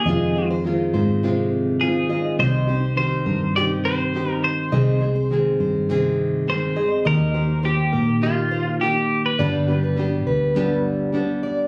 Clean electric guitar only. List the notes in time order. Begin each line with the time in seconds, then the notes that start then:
Already playing: G#4
1.81 G#4
2.40 C5
2.97 C5
3.56 D5
3.85 C5
4.31 A#4
4.44 C5
6.50 C5
7.07 A#4
7.65 G4
8.23 F4
8.81 G4
9.26 B4